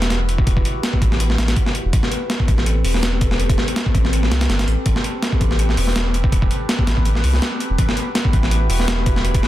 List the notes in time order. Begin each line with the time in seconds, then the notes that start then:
Already playing: E1 E4 F#4 G4 B4
0.02 snare, closed hi-hat
0.10 snare, closed hi-hat
0.29 closed hi-hat
0.38 kick
0.47 kick, closed hi-hat
0.57 kick
0.65 closed hi-hat
0.83 snare, closed hi-hat
0.93 kick
1.02 A1, kick, closed hi-hat
1.12 snare
1.20 closed hi-hat
1.30 snare
1.38 A1, snare, closed hi-hat
1.48 snare, closed hi-hat
1.56 kick, closed hi-hat
1.66 snare
1.75 closed hi-hat
1.85 E1
1.93 A1 C4 G4 A4 B4, kick, closed hi-hat
2.03 snare
2.12 closed hi-hat
2.30 snare, closed hi-hat
2.40 kick
2.48 A1, kick, closed hi-hat
2.58 snare
2.66 closed hi-hat
2.85 E1, open hi-hat
2.94 snare
3.03 snare, closed hi-hat
3.21 kick, closed hi-hat
3.31 snare
3.40 closed hi-hat
3.49 kick, closed hi-hat
3.58 snare
3.68 closed hi-hat
3.76 snare, closed hi-hat
3.86 kick
3.95 A1, kick, closed hi-hat
4.05 snare
4.13 closed hi-hat
4.23 snare
4.31 C2, snare, closed hi-hat
4.41 snare, closed hi-hat
4.49 G1, snare, closed hi-hat
4.59 snare, closed hi-hat
4.67 A1, closed hi-hat
4.86 A1, kick, closed hi-hat
4.96 snare
5.04 closed hi-hat
5.22 snare, closed hi-hat
5.32 kick
5.41 A1, kick, closed hi-hat
5.51 snare
5.59 closed hi-hat
5.69 snare
5.77 E1, open hi-hat
5.87 snare
5.96 snare, closed hi-hat
6.14 closed hi-hat
6.24 kick
6.32 kick, closed hi-hat
6.42 kick
6.51 closed hi-hat
6.69 snare, closed hi-hat
6.79 kick
6.87 A1, snare, closed hi-hat
6.97 kick
7.05 closed hi-hat
7.15 snare
7.23 C2, open hi-hat
7.33 snare
7.42 snare, closed hi-hat
7.60 closed hi-hat
7.70 E1
7.78 A1 E4 F#4, kick, closed hi-hat
7.89 snare
7.97 closed hi-hat
8.15 snare, closed hi-hat
8.25 kick
8.33 A1, kick, closed hi-hat
8.43 snare
8.51 closed hi-hat
8.70 E1, open hi-hat
8.80 snare
8.88 snare, closed hi-hat
9.06 kick, closed hi-hat
9.16 snare
9.25 closed hi-hat
9.34 kick, closed hi-hat
9.43 snare